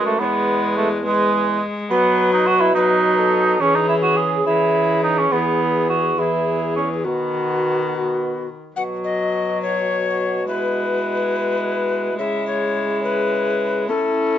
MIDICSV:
0, 0, Header, 1, 5, 480
1, 0, Start_track
1, 0, Tempo, 570342
1, 167, Time_signature, 6, 3, 24, 8
1, 12106, End_track
2, 0, Start_track
2, 0, Title_t, "Recorder"
2, 0, Program_c, 0, 74
2, 0, Note_on_c, 0, 71, 70
2, 139, Note_off_c, 0, 71, 0
2, 170, Note_on_c, 0, 73, 68
2, 206, Note_on_c, 0, 71, 74
2, 214, Note_off_c, 0, 73, 0
2, 875, Note_off_c, 0, 71, 0
2, 888, Note_on_c, 0, 71, 76
2, 1359, Note_off_c, 0, 71, 0
2, 1604, Note_on_c, 0, 71, 86
2, 2286, Note_off_c, 0, 71, 0
2, 2320, Note_on_c, 0, 71, 76
2, 2679, Note_on_c, 0, 69, 77
2, 2692, Note_off_c, 0, 71, 0
2, 3037, Note_off_c, 0, 69, 0
2, 3044, Note_on_c, 0, 68, 73
2, 3743, Note_off_c, 0, 68, 0
2, 3748, Note_on_c, 0, 68, 79
2, 4455, Note_off_c, 0, 68, 0
2, 4468, Note_on_c, 0, 68, 72
2, 5180, Note_off_c, 0, 68, 0
2, 5195, Note_on_c, 0, 68, 63
2, 5927, Note_on_c, 0, 66, 61
2, 5940, Note_off_c, 0, 68, 0
2, 7141, Note_off_c, 0, 66, 0
2, 7374, Note_on_c, 0, 78, 73
2, 7429, Note_off_c, 0, 78, 0
2, 7608, Note_on_c, 0, 75, 68
2, 8086, Note_off_c, 0, 75, 0
2, 8092, Note_on_c, 0, 73, 84
2, 8802, Note_off_c, 0, 73, 0
2, 8816, Note_on_c, 0, 71, 86
2, 10224, Note_off_c, 0, 71, 0
2, 10255, Note_on_c, 0, 76, 72
2, 10489, Note_off_c, 0, 76, 0
2, 10494, Note_on_c, 0, 73, 80
2, 10961, Note_off_c, 0, 73, 0
2, 10969, Note_on_c, 0, 71, 86
2, 11671, Note_off_c, 0, 71, 0
2, 11683, Note_on_c, 0, 69, 78
2, 12106, Note_off_c, 0, 69, 0
2, 12106, End_track
3, 0, Start_track
3, 0, Title_t, "Cor anglais"
3, 0, Program_c, 1, 69
3, 48, Note_on_c, 1, 57, 90
3, 164, Note_on_c, 1, 59, 96
3, 177, Note_off_c, 1, 57, 0
3, 638, Note_off_c, 1, 59, 0
3, 643, Note_on_c, 1, 57, 85
3, 752, Note_off_c, 1, 57, 0
3, 889, Note_on_c, 1, 56, 97
3, 1360, Note_off_c, 1, 56, 0
3, 1597, Note_on_c, 1, 59, 104
3, 1933, Note_off_c, 1, 59, 0
3, 1961, Note_on_c, 1, 63, 92
3, 2077, Note_on_c, 1, 66, 102
3, 2090, Note_off_c, 1, 63, 0
3, 2192, Note_on_c, 1, 64, 101
3, 2205, Note_off_c, 1, 66, 0
3, 2307, Note_off_c, 1, 64, 0
3, 2312, Note_on_c, 1, 63, 102
3, 3031, Note_on_c, 1, 61, 107
3, 3044, Note_off_c, 1, 63, 0
3, 3157, Note_on_c, 1, 63, 93
3, 3170, Note_off_c, 1, 61, 0
3, 3264, Note_off_c, 1, 63, 0
3, 3269, Note_on_c, 1, 64, 96
3, 3324, Note_off_c, 1, 64, 0
3, 3389, Note_on_c, 1, 66, 96
3, 3505, Note_on_c, 1, 68, 97
3, 3518, Note_off_c, 1, 66, 0
3, 3749, Note_off_c, 1, 68, 0
3, 3754, Note_on_c, 1, 64, 86
3, 4223, Note_off_c, 1, 64, 0
3, 4235, Note_on_c, 1, 63, 101
3, 4360, Note_on_c, 1, 61, 97
3, 4373, Note_off_c, 1, 63, 0
3, 4478, Note_on_c, 1, 59, 88
3, 4491, Note_off_c, 1, 61, 0
3, 4952, Note_off_c, 1, 59, 0
3, 4957, Note_on_c, 1, 66, 82
3, 5210, Note_on_c, 1, 64, 71
3, 5223, Note_off_c, 1, 66, 0
3, 5686, Note_off_c, 1, 64, 0
3, 5691, Note_on_c, 1, 61, 79
3, 5798, Note_off_c, 1, 61, 0
3, 5936, Note_on_c, 1, 59, 61
3, 7121, Note_off_c, 1, 59, 0
3, 7382, Note_on_c, 1, 66, 52
3, 8788, Note_off_c, 1, 66, 0
3, 8818, Note_on_c, 1, 64, 56
3, 10225, Note_off_c, 1, 64, 0
3, 10252, Note_on_c, 1, 64, 58
3, 11656, Note_off_c, 1, 64, 0
3, 11689, Note_on_c, 1, 64, 62
3, 12106, Note_off_c, 1, 64, 0
3, 12106, End_track
4, 0, Start_track
4, 0, Title_t, "Viola"
4, 0, Program_c, 2, 41
4, 0, Note_on_c, 2, 56, 73
4, 140, Note_off_c, 2, 56, 0
4, 169, Note_on_c, 2, 56, 71
4, 874, Note_off_c, 2, 56, 0
4, 889, Note_on_c, 2, 56, 70
4, 1605, Note_on_c, 2, 54, 76
4, 1617, Note_off_c, 2, 56, 0
4, 2314, Note_off_c, 2, 54, 0
4, 2319, Note_on_c, 2, 54, 68
4, 3022, Note_off_c, 2, 54, 0
4, 3041, Note_on_c, 2, 52, 70
4, 3742, Note_off_c, 2, 52, 0
4, 3760, Note_on_c, 2, 52, 73
4, 4460, Note_off_c, 2, 52, 0
4, 4476, Note_on_c, 2, 52, 67
4, 5184, Note_off_c, 2, 52, 0
4, 5196, Note_on_c, 2, 52, 55
4, 5925, Note_on_c, 2, 51, 64
4, 5937, Note_off_c, 2, 52, 0
4, 7213, Note_off_c, 2, 51, 0
4, 7382, Note_on_c, 2, 54, 53
4, 8789, Note_off_c, 2, 54, 0
4, 8822, Note_on_c, 2, 56, 59
4, 10227, Note_off_c, 2, 56, 0
4, 10253, Note_on_c, 2, 56, 65
4, 11689, Note_on_c, 2, 61, 63
4, 11701, Note_off_c, 2, 56, 0
4, 12106, Note_off_c, 2, 61, 0
4, 12106, End_track
5, 0, Start_track
5, 0, Title_t, "Bassoon"
5, 0, Program_c, 3, 70
5, 0, Note_on_c, 3, 42, 66
5, 164, Note_off_c, 3, 42, 0
5, 169, Note_on_c, 3, 40, 74
5, 1346, Note_off_c, 3, 40, 0
5, 1603, Note_on_c, 3, 47, 83
5, 3002, Note_off_c, 3, 47, 0
5, 3037, Note_on_c, 3, 49, 74
5, 4478, Note_on_c, 3, 40, 70
5, 4491, Note_off_c, 3, 49, 0
5, 5930, Note_on_c, 3, 47, 65
5, 5943, Note_off_c, 3, 40, 0
5, 7143, Note_off_c, 3, 47, 0
5, 7386, Note_on_c, 3, 47, 58
5, 10224, Note_off_c, 3, 47, 0
5, 10256, Note_on_c, 3, 49, 67
5, 11658, Note_off_c, 3, 49, 0
5, 11695, Note_on_c, 3, 45, 68
5, 12106, Note_off_c, 3, 45, 0
5, 12106, End_track
0, 0, End_of_file